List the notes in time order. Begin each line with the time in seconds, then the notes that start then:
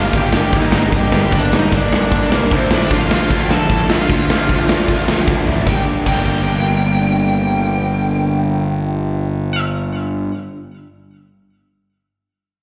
Already playing: G2 D3 G3 A#3 D4 F4 F5
0.12 G1 G2 D3 G3 A#3 D4 G4, kick, open hi-hat
0.17 G5
0.33 G2 D3 G3 A#3 D4 G4 G5, snare
0.52 D2 G2 D3 G3 A#3 D4, kick, open hi-hat
0.57 D#4 D#5
0.72 G1 G2 D3 G3 A#3 D4 D#4, snare
0.78 D#5
0.92 G1 G2 D3 G3 A#3 D4, kick, open hi-hat
0.96 G4 G5
1.12 G1 G2 D3 G3 A#3 D4, snare
1.32 G1 G2 D3 G3 A#3 D4 D5, kick, open hi-hat
1.52 G2 D3 G3 A#3 D4 D#4, snare
1.56 D#5
1.71 G1 G2 D3 G3 A#3 D4 D5, kick, open hi-hat
1.90 G1 G2 D3 G3 A#3 D4, snare
2.11 G1 G2 D3 G3 A#3 D4, kick, open hi-hat
2.30 C2 G2 D3 G3 A#3 D4, snare
2.35 A#3 A#4
2.50 D2 D3 F3 A3 C4 D4 C5, kick, open hi-hat
2.70 A2 D3 F3 A3 D4 D5, snare
2.90 D2 D3 F3 A3 D4 F4 F5, kick, open hi-hat
3.10 D2 D3 F3 A3 D4 F4 F5, snare
3.30 D2 D3 F3 A3 D4, kick, open hi-hat
3.45 G5
3.50 D3 F3 A3 D4 A4 A5, snare
3.68 A2 D3 F3 A3 D4, kick, open hi-hat
3.88 D2 D3 F3 A3 D4 F4 F5, snare
4.08 D2 D3 F3 A3 D4, kick, open hi-hat
4.29 D2 D3 F3 A3 D4, snare
4.48 D2 D3 F3 A3 D4, kick, open hi-hat
4.69 D3 F3 A3 D4, snare
4.88 D2 D3 F3 A3 D4, kick, open hi-hat
5.07 D2 D3 F3 A3 D4, snare
5.27 D2 D3 F3 A3 D4, kick, snare
5.47 A1 D3 F3 A3 D4, floor tom
5.65 G1 G2 D3 G3 A#3 D4 G4, kick, snare
5.69 G5
6.06 G1 G2 D3 G3 A#3 D4 G4 G5, kick, crash